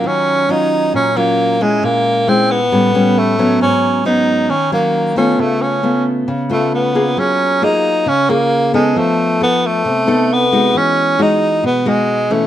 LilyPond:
<<
  \new Staff \with { instrumentName = "Nylon-string guitar" } { \time 4/4 \key ees \minor \tempo 4 = 135 << { <ges des' f'>4 <ges des' f'>4. <ges des' f'>4 <aes des' fes'>8~ | <aes des' fes'>4 <aes des' fes'>8 r8 <g b cis'>8 <g b cis'>4 <ges b cis'>8~ | <ges b cis'>4 <ges ces' des'>4 r8 <ges des'>4 <a ces' f'>8~ | <a ces' f'>4 <a ces' f'>4 r8 <a ces' f'>4 <bes f' aes'>8~ |
<bes f' aes'>4 <bes f' aes'>4 r8 <bes f' aes'>4 <ces' ees' a'>8~ | <ces' ees' a'>4 <b ees' a'>4 r8 <b ees' a'>4 <aes ees' ges'>8~ | <aes ees' ges'>4 <gis dis' fis'>4. <gis dis' fis'>4 <e a des'>8 | } \\ { ees2 bes,2 | bes,2 a,2 | aes,2 ees2 | des2 des2 |
ges2 des2 | f2 c2 | e2 b,2 | } >> }
  \new Staff \with { instrumentName = "Tenor saxophone" } { \time 4/4 \key ees \minor des'4 ees'4 des'8 bes4 aes8 | bes4 c'8 ces'4. a4 | des'4 ees'4 des'8 bes4 des'8 | a8 des'4 r4 a8 ces'4 |
des'4 ees'4 des'8 bes4 aes8 | a4 b8 a4. b4 | des'4 dis'4 b8 gis4 a8 | }
>>